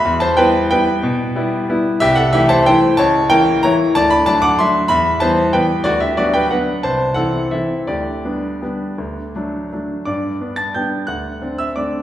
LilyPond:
<<
  \new Staff \with { instrumentName = "Grand piano" } { \time 3/4 \key e \minor \tempo 4 = 181 <e'' b''>8 <c'' a''>8 <b' g''>4 <b' g''>4~ | <b' g''>2~ <b' g''>8 r8 | \key g \major <g' e''>8 <a' fis''>8 <g' e''>8 <c'' a''>8 <c'' g''>4 | <cis'' a''>4 <ais' g''>4 <cis'' ais''>4 |
<d'' a''>8 <d'' b''>8 <d'' a''>8 <fis'' d'''>8 <e'' c'''>4 | <e'' b''>4 <c'' a''>4 <b' g''>4 | <fis' d''>8 <g' e''>8 <fis' d''>8 <b' g''>8 <b' fis''>4 | <c'' a''>4 <a' fis''>4 <a' e''>4 |
<g' d''>2.~ | <g' d''>2 r4 | <d'' d'''>4. <a'' a'''>8 <g'' g'''>4 | <fis'' fis'''>4. <e'' e'''>8 <d'' d'''>4 | }
  \new Staff \with { instrumentName = "Grand piano" } { \time 3/4 \key e \minor e,4 <g b e'>4 <g b e'>4 | b,4 <g b e'>4 <g b e'>4 | \key g \major c,4 <e a e'>4 <e a e'>4 | cis,4 <e ais e'>4 <e ais e'>4 |
d,4 <fis a d'>4 <fis a d'>4 | e,4 <e g b>4 <e g b>4 | d,4 <fis b d'>4 <fis b d'>4 | c,4 <e c' e'>4 <e c' e'>4 |
d,4 <g b d'>4 <g b d'>4 | d,4 <fis a d'>4 <fis a d'>4 | g,4 <b d'>4 <g b d'>4 | d,4 <c' d'>4 <a c' d'>4 | }
>>